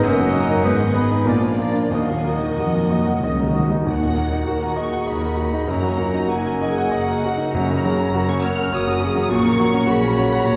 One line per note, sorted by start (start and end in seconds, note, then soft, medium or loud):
0.02 0.63 F#1 medium
0.02 0.62 F#2 medium
0.02 0.63 F#2 medium
0.02 0.63 A#3 medium
0.02 0.35 A#3 medium
0.02 0.61 D#4 medium
0.02 0.64 A#4 medium
0.02 0.16 D#5 medium
0.02 0.62 D#5 medium
0.02 0.93 F#5 medium
0.07 0.63 D#3 medium
0.07 0.64 F#3 medium
0.07 0.20 A#4 medium
0.20 0.43 F#3 medium
0.33 0.65 A#3 medium
0.33 0.59 A#3 medium
0.33 0.49 A#4 medium
0.33 0.47 D#5 medium
0.50 0.64 D#4 medium
0.62 1.26 G#1 medium
0.62 1.25 G#2 medium
0.62 1.26 G#2 medium
0.62 1.26 D#3 medium
0.62 1.27 G#3 medium
0.62 1.26 B3 medium
0.62 1.25 D#4 medium
0.62 1.27 G#4 medium
0.62 0.78 B4 medium
0.62 1.25 D#5 medium
0.62 0.78 D#5 medium
0.66 1.28 B3 medium
0.79 1.04 D#3 soft
0.94 1.20 B3 soft
0.94 1.09 B4 soft
0.94 1.10 D#5 soft
0.94 1.28 B5 medium
1.11 1.27 D#4 soft
1.25 1.91 A#1 medium
1.25 1.89 A#2 medium
1.25 1.91 A#2 medium
1.25 1.90 A#3 medium
1.25 1.91 A#3 soft
1.25 1.91 D4 medium
1.25 1.91 F4 soft
1.25 1.40 A#4 soft
1.25 1.90 D5 medium
1.25 1.42 D5 medium
1.25 1.60 G#5 medium
1.29 1.92 A#2 medium
1.29 1.93 F3 soft
1.41 1.68 F3 soft
1.58 1.85 A#3 soft
1.58 1.74 A#4 soft
1.58 1.75 D5 soft
1.58 1.91 F5 medium
1.73 1.91 D4 soft
1.91 2.57 D#2 medium
1.91 2.58 D#2 medium
1.91 1.98 D#3 soft
1.91 2.58 D#3 medium
1.91 2.58 A#3 soft
1.91 3.65 A#3 medium
1.91 2.58 D#4 soft
1.91 2.06 F#4 soft
1.91 3.69 F#4 medium
1.91 3.68 D#5 soft
1.91 2.08 D#5 soft
1.91 2.35 F5 medium
1.95 2.43 A#2 soft
1.95 2.43 F#3 soft
2.00 2.07 D#3 soft
2.08 2.36 A#2 soft
2.08 2.15 D#3 soft
2.16 2.23 D#3 soft
2.24 2.31 D#3 soft
2.24 2.52 A#3 soft
2.24 2.40 F#4 soft
2.24 2.42 D#5 soft
2.32 2.40 D#3 soft
2.43 2.69 D#4 soft
2.49 2.56 D#3 soft
2.57 3.24 F2 medium
2.57 3.56 A#2 soft
2.57 2.64 D#3 soft
2.57 3.24 F3 soft
2.57 3.56 F#3 soft
2.57 3.55 A#3 soft
2.57 3.55 D#4 medium
2.57 2.73 F#4 soft
2.57 2.86 F#4 soft
2.57 3.21 D#5 soft
2.57 2.75 D#5 soft
2.65 2.72 D#3 soft
2.73 2.80 D#3 soft
2.73 3.01 A#4 soft
2.81 2.88 D#3 soft
2.89 2.96 D#3 medium
2.89 3.06 F#4 soft
2.89 3.18 D#5 soft
2.94 3.04 D#3 medium
2.94 3.08 D#5 soft
3.06 3.12 D#3 medium
3.06 3.33 F#5 soft
3.13 3.19 D#3 medium
3.20 3.87 C#2 soft
3.20 3.87 C#3 soft
3.20 3.27 D#3 medium
3.20 3.39 F#4 soft
3.20 3.50 D#5 soft
3.25 3.34 D#3 medium
3.25 3.39 D#5 soft
3.35 3.42 D#3 medium
3.39 3.66 A#4 soft
3.43 3.50 D#3 medium
3.51 3.58 D#3 medium
3.51 3.81 F#4 soft
3.51 3.70 F#4 soft
3.56 3.66 D#3 medium
3.56 3.70 D#5 soft
3.67 3.73 D#3 medium
3.67 3.88 D#4 soft
3.74 3.82 D#3 medium
3.86 5.66 D#2 soft
3.86 4.42 D#2 medium
3.86 4.43 D#2 soft
3.86 4.03 F#3 soft
3.86 4.02 D#4 soft
3.86 4.46 D#4 medium
3.86 4.02 A#4 soft
3.86 4.76 F#5 medium
3.86 4.03 F#5 soft
4.02 4.28 A#2 soft
4.02 4.19 A#3 soft
4.02 4.18 F#4 soft
4.02 4.19 F#4 soft
4.02 4.18 D#5 soft
4.15 4.34 F#3 soft
4.15 4.43 A#3 soft
4.15 4.34 D#4 soft
4.15 4.33 A#4 soft
4.15 4.33 F#5 soft
4.32 4.50 A#3 soft
4.32 4.58 D#4 soft
4.32 4.50 F#4 soft
4.32 4.50 D#5 soft
4.46 5.03 D#2 soft
4.46 5.03 D#2 medium
4.46 4.73 F#4 soft
4.46 4.79 A#4 medium
4.46 4.62 A#4 soft
4.46 4.62 F#5 soft
4.50 4.64 F#3 soft
4.50 4.64 D#4 soft
4.62 4.80 A#3 soft
4.62 4.79 F#4 soft
4.62 4.80 F#4 soft
4.62 4.88 A#4 soft
4.62 4.79 D#5 soft
4.76 4.95 F#3 soft
4.76 4.95 D#4 soft
4.76 5.68 G#4 medium
4.76 4.94 A#4 soft
4.76 5.03 D#5 soft
4.76 4.94 F#5 soft
4.76 5.11 C#6 medium
4.92 5.10 A#3 soft
4.92 5.09 F#4 soft
4.92 5.10 F#4 soft
4.92 5.09 D#5 soft
4.92 5.19 F#5 soft
5.07 5.64 D#2 medium
5.07 5.25 F#3 soft
5.07 5.24 D#4 soft
5.07 5.23 A#4 soft
5.07 5.33 D#5 soft
5.07 5.23 F#5 soft
5.07 5.71 B5 medium
5.21 5.40 A#3 soft
5.21 5.40 F#4 soft
5.21 5.48 A#4 soft
5.21 5.40 D#5 soft
5.37 5.55 F#3 soft
5.37 5.55 D#4 soft
5.37 5.63 F#4 soft
5.37 5.55 A#4 soft
5.37 5.55 F#5 soft
5.52 5.70 A#3 soft
5.52 5.70 D#4 soft
5.52 5.70 F#4 soft
5.52 5.71 F#4 soft
5.52 5.71 D#5 soft
5.67 7.48 F#2 medium
5.67 6.24 F#2 medium
5.67 5.85 F#3 soft
5.67 5.84 D#4 soft
5.67 6.01 F#4 medium
5.67 5.85 A#4 soft
5.67 5.85 F#5 soft
5.67 6.30 A#5 medium
5.72 6.25 F#1 medium
5.83 6.09 F#3 soft
5.83 6.00 A#3 soft
5.83 6.00 F#4 soft
5.83 6.01 F#4 soft
5.83 6.01 D#5 soft
5.97 6.16 F#3 soft
5.97 6.24 A#3 soft
5.97 6.16 D#4 soft
5.97 6.31 F4 medium
5.97 6.16 A#4 soft
5.97 6.16 F#5 soft
6.14 6.31 A#3 soft
6.14 6.39 D#4 soft
6.14 6.31 F#4 soft
6.14 6.31 D#5 soft
6.28 6.86 F#2 medium
6.28 6.45 F#3 soft
6.28 6.45 D#4 soft
6.28 6.54 F#4 soft
6.28 6.46 A#4 soft
6.28 6.46 F#5 soft
6.28 6.93 G#5 medium
6.32 6.86 F#1 medium
6.32 6.63 D#4 medium
6.44 6.63 A#3 soft
6.44 6.62 F#4 soft
6.44 6.71 A#4 soft
6.44 6.63 D#5 soft
6.61 6.78 F#3 soft
6.61 6.78 D#4 soft
6.61 7.55 G#4 medium
6.61 6.79 A#4 soft
6.61 6.87 D#5 medium
6.61 6.78 F#5 soft
6.78 6.94 A#3 soft
6.78 6.94 F#4 soft
6.78 6.93 D#5 soft
6.78 7.03 F#5 soft
6.92 7.48 F#1 medium
6.92 7.47 F#2 medium
6.92 7.08 F#3 soft
6.92 7.08 D#4 soft
6.92 7.08 A#4 soft
6.92 7.17 D#5 medium
6.92 7.54 F#5 medium
6.92 7.09 F#5 soft
7.07 7.25 A#3 soft
7.07 7.24 F#4 soft
7.07 7.25 F#4 soft
7.07 7.32 A#4 soft
7.07 7.25 D#5 soft
7.24 7.40 F#3 soft
7.24 7.40 D#4 soft
7.24 7.48 F#4 soft
7.24 7.40 A#4 soft
7.24 7.40 F#5 soft
7.37 7.54 A#3 soft
7.37 7.53 D#4 soft
7.37 7.54 F#4 soft
7.37 7.55 F#4 soft
7.37 7.55 D#5 soft
7.54 8.06 F#1 medium
7.54 8.06 F#2 medium
7.54 9.28 F#2 medium
7.54 8.40 F#2 medium
7.54 7.69 A#3 soft
7.54 7.84 F#4 medium
7.54 7.69 F#4 soft
7.54 7.69 A#4 soft
7.54 7.69 F#5 soft
7.54 8.27 A#5 medium
7.68 7.93 C#3 soft
7.68 7.84 C#4 soft
7.68 7.83 F#4 soft
7.68 7.85 A#4 soft
7.68 7.83 A#5 soft
7.85 8.08 F#3 medium
7.85 7.99 A#3 soft
7.85 7.99 F#4 soft
7.85 8.14 G#4 medium
7.85 7.99 A#4 medium
7.85 7.99 F#5 soft
7.99 8.23 C#4 medium
7.99 8.14 C#4 soft
7.99 8.13 F#4 soft
7.99 8.14 A#4 soft
7.99 8.14 A#5 soft
8.13 8.66 F#1 medium
8.13 8.67 F#2 medium
8.13 8.28 A#3 soft
8.13 8.38 F#4 medium
8.13 8.28 F#4 soft
8.13 8.28 A#4 soft
8.13 8.74 A#4 medium
8.13 8.28 F#5 soft
8.28 8.52 C#4 medium
8.28 8.44 C#4 soft
8.28 8.44 F#4 soft
8.28 8.44 A#4 soft
8.28 8.44 A#5 soft
8.28 8.44 C#6 medium
8.42 8.59 A#3 soft
8.42 8.59 F#4 soft
8.42 8.58 A#4 medium
8.42 8.67 C#5 medium
8.42 8.58 F#5 soft
8.42 8.73 F6 medium
8.56 8.81 F#5 medium
8.60 8.74 C#4 soft
8.60 8.74 F#4 soft
8.60 8.74 A#4 soft
8.60 8.74 A#5 soft
8.72 9.25 F#1 medium
8.72 9.25 F#2 medium
8.72 8.87 A#3 medium
8.72 8.87 F#4 medium
8.72 9.03 F#4 medium
8.72 8.88 A#4 soft
8.72 8.97 C#5 medium
8.72 8.87 F#5 soft
8.72 9.33 D#6 medium
8.87 9.03 C#4 soft
8.87 9.11 F#4 medium
8.87 9.03 F#4 soft
8.87 9.03 A#4 soft
8.87 9.03 A#5 soft
8.99 9.25 C#4 medium
8.99 9.17 A#4 soft
8.99 9.18 F#5 medium
9.04 9.18 A#3 medium
9.04 9.18 F#4 medium
9.04 9.33 G#4 medium
9.15 9.31 F#3 medium
9.15 9.33 F#4 medium
9.15 9.33 A#5 soft
9.19 9.33 C#4 medium
9.19 9.33 A#4 medium
9.29 9.83 A#1 medium
9.29 10.56 A#2 medium
9.29 9.83 A#2 medium
9.29 9.46 A#3 medium
9.29 9.46 F#4 medium
9.29 9.89 A#4 medium
9.29 9.46 A#4 medium
9.29 9.46 F#5 medium
9.29 9.89 C#6 medium
9.44 9.69 A#3 medium
9.44 9.62 C#4 medium
9.44 9.61 F#4 soft
9.44 9.62 A#4 medium
9.44 9.62 A#5 soft
9.60 9.84 F#3 medium
9.60 9.76 A#3 medium
9.60 9.76 F#4 medium
9.60 9.76 A#4 medium
9.60 9.76 F#5 medium
9.73 9.97 C#4 medium
9.73 9.90 C#4 soft
9.73 9.90 F#4 soft
9.73 9.90 A#5 soft
9.77 9.91 A#4 soft
9.86 10.40 A#1 medium
9.86 10.11 F#4 medium
9.86 10.47 B5 medium
9.90 10.40 A#2 medium
9.90 10.04 A#3 medium
9.90 10.04 F#4 soft
9.90 10.47 G#4 medium
9.90 10.04 A#4 medium
9.90 10.04 F#5 medium
10.01 10.25 C#4 medium
10.05 10.19 C#4 medium
10.05 10.19 F#4 medium
10.05 10.19 A#4 medium
10.05 10.19 A#5 medium
10.18 10.33 A#3 soft
10.18 10.33 F#4 medium
10.18 10.34 A#4 medium
10.18 10.41 C#5 medium
10.18 10.34 F#5 medium
10.32 10.48 C#4 medium
10.32 10.47 F#4 medium
10.32 10.47 A#4 medium
10.32 10.55 F#5 medium
10.32 10.47 A#5 medium
10.46 10.56 A#1 medium
10.46 10.56 A#2 medium
10.46 10.56 A#3 medium
10.46 10.56 F#4 medium
10.46 10.56 A#4 medium
10.46 10.56 C#5 medium
10.46 10.56 F#5 medium
10.46 10.56 A#5 loud